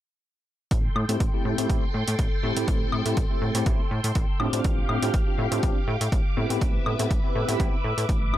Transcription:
0.71 analog synth bass A1, string machine A4 G5 C6, kick, closed hi-hat
0.96 analog synth bass A2, high woodblock
1.09 analog synth bass A2, tine electric piano A3 C4 E4 G4, closed hi-hat
1.20 analog synth bass A1, kick, closed hi-hat
1.33 tine electric piano A3 C4 E4 G4
1.45 analog synth bass A2
1.58 analog synth bass A2, tine electric piano A3 C4 E4 G4, closed hi-hat
1.69 analog synth bass A1, tine electric piano A3 C4 E4 G4, kick, closed hi-hat
1.94 analog synth bass A2
2.08 analog synth bass A2, closed hi-hat
2.19 analog synth bass A1, kick, closed hi-hat
2.43 analog synth bass A2, tine electric piano A3 C4 E4 G4
2.56 analog synth bass A2, tine electric piano A3 C4 E4 G4, closed hi-hat
2.68 analog synth bass A1, kick, closed hi-hat
2.92 analog synth bass A2, high woodblock
3.06 analog synth bass A2, tine electric piano A3 C4 E4 G4, closed hi-hat
3.17 analog synth bass A1, kick, closed hi-hat
3.30 tine electric piano A3 C4 E4 G4
3.42 analog synth bass A2
3.55 analog synth bass A2, tine electric piano A3 C4 E4 G4, closed hi-hat
3.66 analog synth bass A1, tine electric piano A3 E4, kick, closed hi-hat
3.91 analog synth bass A2
4.04 analog synth bass A2, closed hi-hat
4.15 analog synth bass A1, kick, closed hi-hat
4.40 analog synth bass A2, tine electric piano C4 D4 F4 G4, string machine G4 F5 D6, high woodblock
4.53 analog synth bass A2, tine electric piano C4 D4 F4 G4, closed hi-hat
4.64 analog synth bass A1, kick, closed hi-hat
4.89 analog synth bass A2, high woodblock
5.02 analog synth bass A2, tine electric piano C4 D4 F4 G4, closed hi-hat
5.14 analog synth bass A1, kick, closed hi-hat
5.27 tine electric piano C4 D4 F4 G4
5.38 analog synth bass A2
5.51 analog synth bass A2, tine electric piano C4 D4 F4 G4, closed hi-hat
5.63 analog synth bass A1, tine electric piano C4 D4 G4, kick, closed hi-hat
5.88 analog synth bass A2
6.01 analog synth bass A2, closed hi-hat
6.12 analog synth bass A1, kick, closed hi-hat
6.37 analog synth bass A2, tine electric piano B3 C4 E4 G4, string machine B4 E5
6.50 analog synth bass A2, tine electric piano B3 C4 E4 G4, closed hi-hat
6.61 analog synth bass A1, kick, closed hi-hat
6.86 analog synth bass A2, high woodblock
6.99 analog synth bass A2, tine electric piano B3 C4 E4 G4, closed hi-hat
7.11 analog synth bass A1, kick, closed hi-hat
7.24 tine electric piano B3 C4 E4 G4
7.35 analog synth bass A2
7.48 analog synth bass A2, tine electric piano B3 C4 E4 G4, closed hi-hat
7.59 analog synth bass A1, tine electric piano B3 C4 E4 G4, kick, closed hi-hat
7.84 analog synth bass A2
7.98 analog synth bass A2, closed hi-hat
8.09 analog synth bass A1, kick, closed hi-hat
8.33 analog synth bass A2, tine electric piano B3 C4 E4 G4, high woodblock

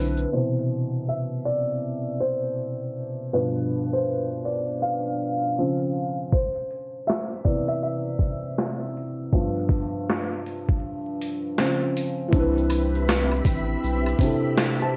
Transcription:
Already playing: sub bass B1, felt piano D3 C4 D4 E4 B4
0.17 shaker
0.33 felt piano B2 C3 E3 C5
1.08 felt piano E5
1.45 felt piano D5
2.21 felt piano C5
3.33 felt piano G2 B2 F3 B4
3.93 felt piano C5
4.45 felt piano D5
4.82 felt piano F5
5.58 felt piano C#3 F3 C4
6.32 felt piano C5, kick
6.71 closed hi-hat
7.07 felt piano E5, snare, clap
7.45 felt piano C3 E3 B3 D5, kick, closed hi-hat
7.68 felt piano E5
7.83 felt piano E5
8.19 kick, closed hi-hat
8.58 snare, clap
8.97 closed hi-hat
9.32 felt piano G2 F3 B3, kick
9.69 kick, closed hi-hat
10.10 snare, clap
10.46 closed hi-hat
10.69 kick
11.22 closed hi-hat
11.58 felt piano C#3 F3 C4, snare, clap
11.97 closed hi-hat
12.28 felt piano E3 C4, string machine C4 E5
12.32 sub bass C2, felt piano D4, string machine G4 B5, kick, shaker
12.37 felt piano E4 B4
12.58 shaker
12.70 closed hi-hat, high woodblock, shaker
12.95 shaker
13.08 snare, clap, shaker
13.32 high woodblock, shaker
13.45 sub bass A1, kick, closed hi-hat, shaker
13.83 sub bass B1, shaker
14.06 high woodblock, shaker
14.19 felt piano C3 C4 D4, kick, closed hi-hat, shaker
14.23 felt piano E4 A4
14.57 snare, clap, shaker
14.79 felt piano C5 A5, shaker

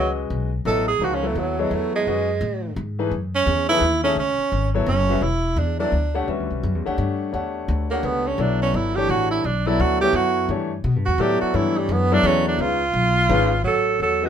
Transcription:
Already playing: upright bass C#2, grand piano G#3 C#4 F#4 B4 D#5
0.00 tenor saxophone F#3
0.30 upright bass B1
0.65 upright bass A1, grand piano F#3 B3 E4 A4 D#5, tenor saxophone A4
0.88 tenor saxophone G#4
0.99 upright bass C#2, grand piano F3 A#3 D#4 G#4 C5
1.04 tenor saxophone F#4
1.15 tenor saxophone C#4
1.23 grand piano F#3 B3 E4 A4 C#5, tenor saxophone A3
1.35 upright bass D#2, tenor saxophone F#3
1.59 grand piano F#3 B3 E4 A4 C#5, tenor saxophone G#3
1.71 upright bass E2, tenor saxophone A3
1.95 tenor saxophone G#3
2.07 upright bass F#2, grand piano G#3 C#4 F#4 B4 D#5
2.41 upright bass A2
2.76 upright bass G#2
2.99 grand piano E3 A3 D#4 G#4 B4
3.11 upright bass F#2
3.35 tenor saxophone C#4
3.47 upright bass E2
3.69 grand piano E3 A3 D#4 G#4 B4, tenor saxophone E4
3.81 upright bass D#2
4.04 grand piano A3 D#4 G#4 C#5 E5, tenor saxophone C#4
4.16 upright bass C#2, tenor saxophone C#4
4.39 muted upright bass stroke
4.52 upright bass G#1
4.74 grand piano F#3 B3 E4 A4 C#5
4.86 upright bass F#1, tenor saxophone C#4
5.09 grand piano G3 C#4 F#4 B4 E5
5.21 upright bass E1, tenor saxophone E4
5.56 upright bass E2, tenor saxophone D4
5.79 grand piano F#3 B3 E4 A4 D5, tenor saxophone D4
5.92 upright bass D2
6.15 grand piano A3 D4 G4 C#5 F#5
6.28 upright bass E2, grand piano G3 C#4 F#4 B4 E5
6.40 upright bass D2
6.50 upright bass B1
6.63 upright bass F#2
6.75 upright bass E2
6.86 upright bass D2, grand piano A3 D4 G4 C#5 F#5
6.98 upright bass G2
7.33 upright bass E2, grand piano A3 D4 G4 C#5 F#5
7.68 upright bass D2
7.90 grand piano A3 D4 G4 C#5 F#5, tenor saxophone A#3
8.03 upright bass C#2, tenor saxophone B3
8.27 tenor saxophone C#4
8.38 upright bass B1, grand piano F#3 B3 E4 A4 D5, tenor saxophone D4
8.62 tenor saxophone C#4
8.74 upright bass G1, tenor saxophone E4
8.96 grand piano E3 A3 D4 G4 C#5, tenor saxophone G4
9.09 upright bass A1, tenor saxophone F#4
9.31 tenor saxophone E4
9.44 upright bass B1, tenor saxophone D4
9.66 grand piano F#3 B3 E4 A4 D5, tenor saxophone E4
9.79 upright bass D2, tenor saxophone F#4
10.01 grand piano F#3 B3 E4 A4 C#5, tenor saxophone G4
10.13 upright bass F#2, tenor saxophone F#4
10.49 upright bass G2, grand piano E3 A3 D4 G4 C#5
10.84 upright bass B2
10.96 upright bass G2
11.06 upright bass E2, tenor saxophone F#4
11.18 upright bass A2, grand piano F#3 B3 E4 A4 D5, tenor saxophone G4
11.41 tenor saxophone F#4, muted upright bass stroke
11.54 upright bass G2, grand piano E3 A3 D4 G4 C#5, tenor saxophone E4
11.78 tenor saxophone G3
11.89 upright bass F#2, tenor saxophone B3
12.12 grand piano F#3 B3 E4 A4 D5, tenor saxophone D4
12.23 upright bass E2, tenor saxophone C#4
12.48 tenor saxophone D4
12.59 upright bass C#2, grand piano G#3 C#4 D#4 F4 B4, tenor saxophone F4
12.93 upright bass B1
13.29 upright bass G#1, grand piano G#3 C#4 D#4 F4 B4
13.64 upright bass A1, tenor saxophone F#3, alto saxophone A4
14.00 upright bass E2, tenor saxophone F#3, alto saxophone A4
14.22 tenor saxophone D#3, grand piano G#3 C#4 F#4 B4 D#5, alto saxophone F#4

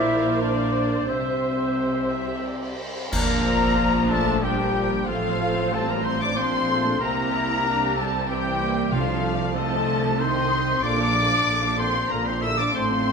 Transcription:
Already playing: double bass section A#1, cello section A#2, french horn section E4, viola section A#4 C5, clarinet C5, oboe D5, violin section D5 E5 F5, flute E5
0.40 french horn section D4, clarinet C5, flute D5, oboe D5, violin section D5
1.06 double bass section C2, cello section C3, french horn section C4, viola section G4, flute C5, violin section C5 E5, clarinet C5, oboe E5
1.75 violin section C5
2.09 violin section E5
2.45 violin section D5
2.79 violin section C5
3.11 double bass section A#1, cello section A#2, viola section F3 D4, french horn section A#3, violin section F4 D5 A#5, clarinet A#4, flute A#5, concert bass drum, crash
3.45 viola section C4
3.77 viola section A#3
4.09 french horn section A3, viola section D4, clarinet A4, flute A5, violin section A5
4.42 french horn section G3, viola section D4, violin section D4 A#4 G5, clarinet G4, flute G5
4.74 viola section A#3
5.06 double bass section A1, cello section A2, french horn section F3, viola section A3 C4, violin section F4 C5 F5, clarinet F4, flute F5
5.72 viola section G3, french horn section A3, clarinet A4, violin section A5, flute A5
5.85 french horn section A#3, violin section A#5
5.90 clarinet A#4, flute A#5
6.01 french horn section C4, clarinet C5, violin section C6, flute C6
6.20 french horn section D4, clarinet D5, violin section D6, flute D6
6.35 double bass section A#1, cello section A#2, viola section F3 D4, french horn section C4, violin section F4 C5 C6, clarinet C5, flute C6
6.69 viola section A3
7.00 double bass section C2, cello section C3, viola section G3 C4, french horn section A#3, violin section E4 G4 A#5, clarinet A#4, flute A#5
7.33 viola section E4
7.65 viola section G3 D4, violin section G4 A#4
7.96 french horn section G3, viola section C4, clarinet A4, violin section A5, flute A5
8.28 viola section E3 C4, french horn section G3, violin section G4 C5 G5, clarinet G4, flute G5
8.61 viola section A#3
8.92 double bass section C2, timpani C3, cello section C3, viola section F3 A3, french horn section F3, violin section D4 C5 F5, clarinet F4, flute F5
9.25 violin section D5
9.55 viola section F3 C4, french horn section A3, violin section C4 D#5 A5, clarinet A4, flute A5
9.89 viola section D3
10.20 viola section D#3 D#4, violin section C4 D#5 C6, french horn section C4, clarinet C5, flute C6
10.82 double bass section A#1, cello section A#2, viola section D3 A#3, french horn section D4, violin section F4 D5 D6, clarinet D5, flute D6
10.99 viola section F3 D4, violin section D4 F5
11.14 viola section D3 A#3, violin section F4 D5
11.30 viola section F3 D4, violin section D4 F5
11.46 double bass section A#1, cello section A#2, viola section D3 A#3, violin section F4 D5
11.62 viola section F3 D4, violin section D4 F5
11.77 viola section D3 A#3, french horn section C4, violin section F4 D5 C6, clarinet C5, flute C6
11.93 viola section F3 D4, violin section D4 F5
12.09 double bass section A#1, cello section A#2, viola section D3 A#3, french horn section A#3, violin section F4 D5 A#5, clarinet A#4, flute A#5
12.23 viola section F3 D4, french horn section C4, clarinet C5, flute C6, violin section C6
12.29 violin section D4 F5
12.41 viola section D3 A#3, french horn section E4, violin section F4 D5 E6, clarinet E5, flute E6
12.57 viola section F3 D4, french horn section D4, clarinet D5, flute D6, violin section D6
12.62 violin section D4 F5
12.73 double bass section A1, cello section A2, viola section A3 C4, french horn section C4, violin section A4 C6, clarinet C5, flute C6
12.91 viola section F3 A3, violin section F4 C5
13.06 viola section A3 C4, violin section A4

